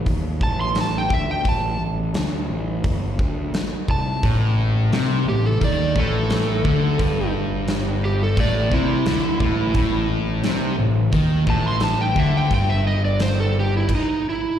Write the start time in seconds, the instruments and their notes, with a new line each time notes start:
0.06 picked electric bass D#2, kick, open hi-hat
0.41 picked electric bass A1, electric slide guitar A5, kick
0.61 electric slide guitar C6
0.75 snare, open hi-hat
0.81 electric slide guitar A5
0.98 electric slide guitar G5
1.10 picked electric bass D2, electric slide guitar E5, kick
1.31 electric slide guitar G5
1.45 picked electric bass A1, kick, open hi-hat
1.49 electric slide guitar A5
1.79 picked electric bass A1
2.14 picked electric bass D2, snare, open hi-hat
2.48 picked electric bass A1
2.84 picked electric bass G1, kick, open hi-hat
3.19 picked electric bass D2, kick
3.52 muted picked electric bass stroke, snare, open hi-hat
3.88 picked electric bass C2, electric slide guitar A5, kick
4.23 picked electric bass A1, distorted electric guitar A2, kick, open hi-hat
4.92 picked electric bass C2, distorted electric guitar C3, snare, open hi-hat
5.26 picked electric bass A1, distorted electric guitar A2, electric slide guitar G4
5.46 electric slide guitar A4
5.61 picked electric bass D#2, distorted electric guitar D#3, electric slide guitar D5, kick, open hi-hat
5.95 picked electric bass A1, distorted electric guitar A2, kick
6.00 electric slide guitar A4
6.30 snare, open hi-hat
6.64 picked electric bass D2, distorted electric guitar D3, kick
6.98 picked electric bass G1, distorted electric guitar G2, kick, open hi-hat
7.68 snare, open hi-hat
8.05 electric slide guitar G4
8.23 electric slide guitar A4
8.37 picked electric bass A1, distorted electric guitar A2, electric slide guitar D5, kick, open hi-hat
8.71 picked electric bass C2, distorted electric guitar C3, electric slide guitar E4, kick
9.06 picked electric bass D2, distorted electric guitar D3, snare, open hi-hat
9.40 picked electric bass A1, distorted electric guitar A2, kick
9.74 picked electric bass A1, distorted electric guitar A2, kick, open hi-hat
10.44 picked electric bass C2, distorted electric guitar C3, snare, open hi-hat
10.78 picked electric bass A1, distorted electric guitar A2
11.12 picked electric bass D#2, distorted electric guitar D#3, kick, open hi-hat
11.46 picked electric bass A1, distorted electric guitar A2, electric slide guitar A5, kick
11.68 electric slide guitar C6
11.80 electric slide guitar A5, snare, open hi-hat
12.01 electric slide guitar G5
12.16 picked electric bass D2, distorted electric guitar D3, electric slide guitar E5, kick
12.37 electric slide guitar G5
12.50 picked electric bass G1, distorted electric guitar G2, electric slide guitar G5, kick, open hi-hat
12.70 electric slide guitar E5
12.87 electric slide guitar D#5
13.05 electric slide guitar D5
13.20 electric slide guitar C5, snare, open hi-hat
13.40 electric slide guitar A4
13.60 electric slide guitar G4
13.77 electric slide guitar E4
13.89 kick, crash
13.95 electric slide guitar D#4
14.29 electric slide guitar E4